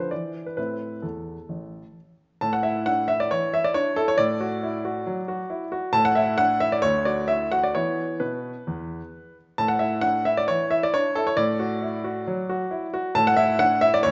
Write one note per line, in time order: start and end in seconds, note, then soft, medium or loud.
0.00 0.13 D3 soft
0.00 0.10 F3 soft
0.00 0.13 F4 soft
0.00 0.13 B4 medium
0.00 0.13 C5 medium
0.11 0.45 E3 soft
0.11 0.46 D5 medium
0.46 0.55 B4 soft
0.57 0.90 A2 soft
0.57 0.95 C4 soft
0.57 0.95 E4 soft
0.57 1.04 B4 medium
1.02 1.35 E2 soft
1.02 1.95 A4 soft
1.49 1.81 A1 soft
2.41 3.29 A2 medium
2.41 2.53 A5 medium
2.53 2.64 F#5 medium
2.63 3.00 E4 medium
2.63 2.86 E5 medium
2.86 3.09 D4 soft
2.86 3.09 F#5 loud
3.08 3.45 E4 medium
3.08 3.20 E5 medium
3.20 3.31 D5 medium
3.31 3.67 E3 medium
3.31 3.53 C#5 loud
3.54 3.89 E4 medium
3.54 3.65 E5 loud
3.64 3.75 D5 medium
3.74 3.97 D4 soft
3.74 3.97 C#5 loud
3.96 4.19 E4 medium
3.96 4.08 A4 loud
4.08 4.19 C#5 loud
4.18 5.04 A2 medium
4.18 5.94 D5 loud
4.40 4.76 F#4 medium
4.63 4.85 E4 medium
4.85 5.20 F#4 medium
5.06 5.41 F#3 medium
5.28 5.63 F#4 medium
5.50 5.72 E4 medium
5.72 5.94 F#4 medium
5.93 6.81 A2 medium
5.93 6.05 A5 loud
6.05 6.17 F#5 loud
6.15 6.53 E4 medium
6.15 6.39 E5 loud
6.38 6.61 D4 medium
6.38 6.61 F#5 loud
6.60 6.84 E4 medium
6.60 6.72 E5 loud
6.72 6.84 D5 loud
6.82 7.71 D2 medium
6.82 7.05 C#5 loud
7.05 7.42 F#4 medium
7.05 7.28 D5 medium
7.28 7.52 E4 soft
7.28 7.51 E5 loud
7.52 7.75 F#4 medium
7.52 7.63 F#5 medium
7.63 7.75 D5 medium
7.75 8.07 E3 medium
7.75 8.12 B3 soft
7.75 8.12 E4 soft
7.75 8.21 C#5 medium
8.20 8.52 B2 medium
8.20 9.35 B4 medium
8.67 8.99 E2 medium
9.58 10.46 A2 medium
9.58 9.70 A5 loud
9.68 9.80 F#5 medium
9.79 10.17 E4 medium
9.79 10.03 E5 medium
10.01 10.25 D4 soft
10.01 10.25 F#5 loud
10.25 10.63 E4 medium
10.25 10.37 E5 loud
10.37 10.49 D5 loud
10.48 10.85 E3 medium
10.48 10.71 C#5 loud
10.71 11.08 E4 medium
10.71 10.82 E5 loud
10.83 10.95 D5 loud
10.94 11.17 D4 medium
10.94 11.16 C#5 loud
11.15 11.39 E4 medium
11.15 11.27 A4 loud
11.27 11.38 C#5 loud
11.37 12.24 A2 medium
11.37 13.15 D5 loud
11.60 11.96 F#4 medium
11.82 12.05 E4 medium
12.04 12.40 F#4 medium
12.27 12.63 F#3 medium
12.49 12.85 F#4 medium
12.71 12.94 E4 medium
12.94 13.16 F#4 medium
13.15 14.01 A2 medium
13.15 13.26 A5 loud
13.27 13.38 F#5 loud
13.37 13.73 E4 medium
13.37 13.59 E5 loud
13.59 13.82 D4 medium
13.59 13.81 F#5 loud
13.81 14.04 E4 medium
13.81 13.92 E5 loud
13.94 14.04 D5 loud
14.03 14.11 D2 medium
14.03 14.11 C#5 loud